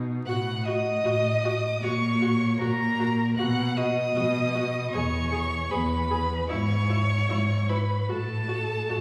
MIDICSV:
0, 0, Header, 1, 5, 480
1, 0, Start_track
1, 0, Key_signature, 4, "major"
1, 0, Tempo, 775194
1, 180, Time_signature, 4, 2, 24, 8
1, 3541, Tempo, 798935
1, 5517, End_track
2, 0, Start_track
2, 0, Title_t, "Violin"
2, 0, Program_c, 0, 40
2, 162, Note_on_c, 0, 90, 108
2, 392, Note_off_c, 0, 90, 0
2, 409, Note_on_c, 0, 87, 127
2, 1125, Note_on_c, 0, 85, 119
2, 1135, Note_off_c, 0, 87, 0
2, 1598, Note_on_c, 0, 82, 125
2, 1607, Note_off_c, 0, 85, 0
2, 2082, Note_off_c, 0, 82, 0
2, 2086, Note_on_c, 0, 90, 107
2, 2330, Note_on_c, 0, 87, 127
2, 2339, Note_off_c, 0, 90, 0
2, 3035, Note_off_c, 0, 87, 0
2, 3039, Note_on_c, 0, 85, 127
2, 3531, Note_on_c, 0, 83, 116
2, 3541, Note_off_c, 0, 85, 0
2, 4002, Note_off_c, 0, 83, 0
2, 4006, Note_on_c, 0, 85, 120
2, 4725, Note_on_c, 0, 83, 91
2, 4734, Note_off_c, 0, 85, 0
2, 4973, Note_on_c, 0, 81, 114
2, 4982, Note_off_c, 0, 83, 0
2, 5517, Note_off_c, 0, 81, 0
2, 5517, End_track
3, 0, Start_track
3, 0, Title_t, "Violin"
3, 0, Program_c, 1, 40
3, 159, Note_on_c, 1, 78, 107
3, 404, Note_on_c, 1, 75, 109
3, 413, Note_off_c, 1, 78, 0
3, 1131, Note_on_c, 1, 73, 90
3, 1141, Note_off_c, 1, 75, 0
3, 1606, Note_off_c, 1, 73, 0
3, 1609, Note_on_c, 1, 70, 95
3, 2080, Note_off_c, 1, 70, 0
3, 2096, Note_on_c, 1, 78, 110
3, 2332, Note_on_c, 1, 75, 104
3, 2341, Note_off_c, 1, 78, 0
3, 3050, Note_on_c, 1, 73, 100
3, 3059, Note_off_c, 1, 75, 0
3, 3535, Note_on_c, 1, 71, 92
3, 3544, Note_off_c, 1, 73, 0
3, 4007, Note_on_c, 1, 73, 109
3, 4016, Note_off_c, 1, 71, 0
3, 4725, Note_on_c, 1, 71, 83
3, 4734, Note_off_c, 1, 73, 0
3, 4975, Note_on_c, 1, 69, 96
3, 4984, Note_off_c, 1, 71, 0
3, 5517, Note_off_c, 1, 69, 0
3, 5517, End_track
4, 0, Start_track
4, 0, Title_t, "Viola"
4, 0, Program_c, 2, 41
4, 0, Note_on_c, 2, 63, 89
4, 152, Note_off_c, 2, 63, 0
4, 175, Note_on_c, 2, 66, 88
4, 224, Note_off_c, 2, 66, 0
4, 415, Note_on_c, 2, 66, 78
4, 465, Note_off_c, 2, 66, 0
4, 647, Note_on_c, 2, 66, 82
4, 696, Note_off_c, 2, 66, 0
4, 893, Note_on_c, 2, 66, 76
4, 943, Note_off_c, 2, 66, 0
4, 1131, Note_on_c, 2, 66, 78
4, 1181, Note_off_c, 2, 66, 0
4, 1372, Note_on_c, 2, 66, 79
4, 1422, Note_off_c, 2, 66, 0
4, 1613, Note_on_c, 2, 66, 76
4, 1663, Note_off_c, 2, 66, 0
4, 1852, Note_on_c, 2, 66, 74
4, 1902, Note_off_c, 2, 66, 0
4, 2096, Note_on_c, 2, 66, 81
4, 2145, Note_off_c, 2, 66, 0
4, 2335, Note_on_c, 2, 66, 70
4, 2385, Note_off_c, 2, 66, 0
4, 2573, Note_on_c, 2, 66, 76
4, 2623, Note_off_c, 2, 66, 0
4, 2810, Note_on_c, 2, 66, 70
4, 2860, Note_off_c, 2, 66, 0
4, 3060, Note_on_c, 2, 68, 77
4, 3110, Note_off_c, 2, 68, 0
4, 3289, Note_on_c, 2, 68, 79
4, 3339, Note_off_c, 2, 68, 0
4, 3535, Note_on_c, 2, 68, 76
4, 3583, Note_off_c, 2, 68, 0
4, 3771, Note_on_c, 2, 68, 73
4, 3819, Note_off_c, 2, 68, 0
4, 4004, Note_on_c, 2, 64, 83
4, 4052, Note_off_c, 2, 64, 0
4, 4246, Note_on_c, 2, 64, 69
4, 4294, Note_off_c, 2, 64, 0
4, 4486, Note_on_c, 2, 64, 69
4, 4534, Note_off_c, 2, 64, 0
4, 4726, Note_on_c, 2, 64, 68
4, 4774, Note_off_c, 2, 64, 0
4, 4963, Note_on_c, 2, 66, 70
4, 5011, Note_off_c, 2, 66, 0
4, 5200, Note_on_c, 2, 66, 68
4, 5248, Note_off_c, 2, 66, 0
4, 5449, Note_on_c, 2, 66, 72
4, 5497, Note_off_c, 2, 66, 0
4, 5517, End_track
5, 0, Start_track
5, 0, Title_t, "Cello"
5, 0, Program_c, 3, 42
5, 0, Note_on_c, 3, 47, 86
5, 153, Note_off_c, 3, 47, 0
5, 175, Note_on_c, 3, 45, 94
5, 598, Note_off_c, 3, 45, 0
5, 660, Note_on_c, 3, 45, 91
5, 1081, Note_off_c, 3, 45, 0
5, 1137, Note_on_c, 3, 46, 89
5, 1556, Note_off_c, 3, 46, 0
5, 1615, Note_on_c, 3, 46, 90
5, 2037, Note_off_c, 3, 46, 0
5, 2092, Note_on_c, 3, 47, 100
5, 2515, Note_off_c, 3, 47, 0
5, 2575, Note_on_c, 3, 47, 94
5, 2999, Note_off_c, 3, 47, 0
5, 3057, Note_on_c, 3, 40, 94
5, 3483, Note_off_c, 3, 40, 0
5, 3544, Note_on_c, 3, 40, 91
5, 3958, Note_off_c, 3, 40, 0
5, 4011, Note_on_c, 3, 44, 100
5, 4436, Note_off_c, 3, 44, 0
5, 4489, Note_on_c, 3, 44, 82
5, 4913, Note_off_c, 3, 44, 0
5, 4972, Note_on_c, 3, 45, 80
5, 5400, Note_off_c, 3, 45, 0
5, 5465, Note_on_c, 3, 45, 80
5, 5517, Note_off_c, 3, 45, 0
5, 5517, End_track
0, 0, End_of_file